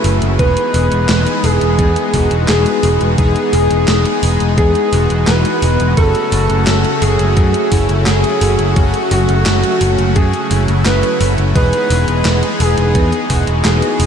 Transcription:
Already playing: C#3 F#3 A3 C#4 E4 F#4 B4
0.04 F#1, open hi-hat
0.22 F#1, closed hi-hat
0.39 E1 E3 G#3 B3 D#4 G#4 B4, kick, closed hi-hat
0.57 closed hi-hat
0.74 E1, open hi-hat
0.92 E1, closed hi-hat
1.09 E1, snare, clap, closed hi-hat
1.27 closed hi-hat
1.44 E1 G#4, open hi-hat
1.61 E1, closed hi-hat
1.79 E2, kick, closed hi-hat
1.96 closed hi-hat
2.14 E1 E3 G#3 B3 D#4 F#4, kick, open hi-hat
2.31 E1, closed hi-hat
2.48 E1 G#4, snare, clap, closed hi-hat
2.66 closed hi-hat
2.83 E1, open hi-hat
3.01 E1, closed hi-hat
3.18 E1 E3 G#3 B3 D#4 G#4, kick, closed hi-hat
3.36 closed hi-hat
3.53 E1 G#4, open hi-hat
3.71 E1, closed hi-hat
3.88 E1, snare, clap, closed hi-hat
4.05 closed hi-hat
4.23 E1, open hi-hat
4.40 E1, closed hi-hat
4.58 E2 G#4, kick, closed hi-hat
4.75 closed hi-hat
4.93 E1 E3 G#3 B3 D#4 F#4, open hi-hat
5.10 E1, closed hi-hat
5.27 E1 B4, snare, clap, closed hi-hat
5.45 closed hi-hat
5.62 E1, open hi-hat
5.80 E1, closed hi-hat
5.97 F#1 C#3 F#3 A3 C#4 F#4 A4, kick, closed hi-hat
6.15 closed hi-hat
6.32 F#1, open hi-hat
6.50 F#1, closed hi-hat
6.67 F#1, snare, clap, closed hi-hat
6.84 closed hi-hat
7.02 F#1 G#4, open hi-hat
7.19 F#1, closed hi-hat
7.37 F#2, kick, closed hi-hat
7.54 closed hi-hat
7.72 F#1 A3 C#4 E4, kick, open hi-hat
7.89 F#1, closed hi-hat
8.06 F#1 G#4, snare, clap, closed hi-hat
8.24 closed hi-hat
8.41 F#1, open hi-hat
8.59 F#1, closed hi-hat
8.76 F#1 A3 C#4 F#4, kick, closed hi-hat
8.94 closed hi-hat
9.11 F#1 F#4, open hi-hat
9.29 F#1, closed hi-hat
9.46 F#1, snare, clap, closed hi-hat
9.63 closed hi-hat
9.81 F#1, open hi-hat
9.98 F#1, closed hi-hat
10.16 F#2 G#4, kick, closed hi-hat
10.33 closed hi-hat
10.51 F#1 A3 C#4 E4, open hi-hat
10.68 F#1, closed hi-hat
10.86 F#1 B4, snare, clap, closed hi-hat
11.03 closed hi-hat
11.21 F#1, open hi-hat
11.38 F#1, closed hi-hat
11.55 E1 E3 G#3 B3 D#4 G#4 B4, kick, closed hi-hat
11.73 closed hi-hat
11.90 E1, open hi-hat
12.08 E1, closed hi-hat
12.25 E1, snare, clap, closed hi-hat
12.43 closed hi-hat
12.60 E1 G#4, open hi-hat
12.78 E1, closed hi-hat
12.95 E2, kick, closed hi-hat
13.12 closed hi-hat
13.30 E1 E3 G#3 B3 D#4 F#4, kick, open hi-hat
13.47 E1, closed hi-hat
13.65 E1 G#4, snare, clap, closed hi-hat
13.82 closed hi-hat
14.00 E1, open hi-hat

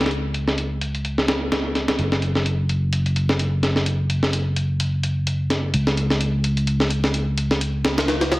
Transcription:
Already playing: C#2
0.01 snare, closed hi-hat
0.06 snare, closed hi-hat
0.11 closed hi-hat
0.34 closed hi-hat
0.48 snare
0.58 closed hi-hat
0.81 closed hi-hat
0.95 closed hi-hat
1.05 closed hi-hat
1.18 snare
1.28 snare, closed hi-hat
1.52 snare, closed hi-hat
1.75 snare, closed hi-hat
1.88 snare, closed hi-hat
1.99 F#1, closed hi-hat
2.12 snare
2.22 closed hi-hat
2.35 snare
2.46 closed hi-hat
2.69 closed hi-hat
2.93 closed hi-hat
3.06 closed hi-hat
3.16 closed hi-hat
3.29 snare
3.39 closed hi-hat
3.63 snare, closed hi-hat
3.76 snare
3.86 closed hi-hat
4.10 closed hi-hat
4.23 snare
4.33 closed hi-hat
4.56 closed hi-hat
4.80 closed hi-hat
5.03 closed hi-hat
5.27 closed hi-hat
5.50 snare, closed hi-hat
5.74 C#2, closed hi-hat
5.87 snare
5.97 closed hi-hat
6.10 snare
6.21 closed hi-hat
6.44 closed hi-hat
6.57 closed hi-hat
6.67 closed hi-hat
6.80 snare
6.90 closed hi-hat
7.04 snare
7.14 closed hi-hat
7.38 closed hi-hat
7.51 snare
7.61 closed hi-hat
7.85 snare, closed hi-hat
7.98 snare, closed hi-hat
8.08 snare, closed hi-hat
8.21 snare, closed hi-hat
8.32 snare, closed hi-hat

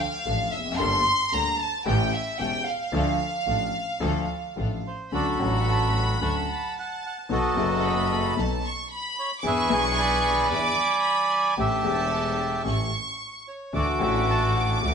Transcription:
Already playing: F5
0.25 A1 A2 F3 A3 D4 F4 A4
0.52 F1 E5
0.58 E2
0.65 F2
0.72 F#2
0.78 G1 G2 G3 A#3 D4 G4 A4 C6
1.32 D2 D3 G3 A#3 D4 G4 A4 A#5
1.59 A5
1.85 A1 A2 E3 A3 C#4 G4 A4 G5
2.13 E5
2.39 E1 E2 E3 A3 C#4 G4 A4 G5
2.66 F5
2.92 D2 D3 F3 A3 D4 F4 A4
3.46 A1 A2 F3 A3 D4 F4 A4
4.00 D2 D3 F3 A3 D4 F4 A4
4.56 A1 A2 F3 A3 D4 F4 A4
4.87 C5
5.12 D2 D3 F#3 C#4 D4 F#4 A4 D5 B5
5.38 A1 A2 F#3 C#4 D4 F#4
5.42 A4 F#5
5.71 A5
5.97 F#5
6.21 D2 D3 F#3 C#4 D4 F#4 A4 F#5 A5 C#6
6.52 A5
6.76 F#5 A5
7.06 F#5
7.29 B1 B2 F#3 B3 D#4 F#4 A4 D#5 A5
7.54 F#1 F#2 F#3 B3 D#4 A4
7.59 A4
7.82 B5
8.36 B1 B2 F#3 B3 D#4 A4 A5
8.65 C#6
8.92 B5
9.19 C#5
9.39 E2 E3 B3 D4 D6
9.44 E2 D4 E4 G#4 B4 E5 C#6
9.68 B1 B2 E3 B3 D4 E4 G#4
9.73 G#5
9.98 D5 G#5 B5
10.50 E2 E3 B3 D4 E4 G#4 D6
11.05 B5
11.31 G#5
11.57 A1 A2 E3 A3 D4 G4 A4 E5 A5
11.81 E1 E2 E3 A3 D4 G4 A4
11.86 G4
12.64 A1 A2 E3 A3 C#4 G4 A4 C#6
13.48 C#5
13.73 D2 D3 E3 A3 D4 E4 F#4 A4 D5 D6
13.99 A1 A2 E3 A3 D4 E4 F#4
14.03 F#4 E5
14.31 A5
14.57 F#5
14.81 D2 D3 E3 A3 D4 E4 F#4

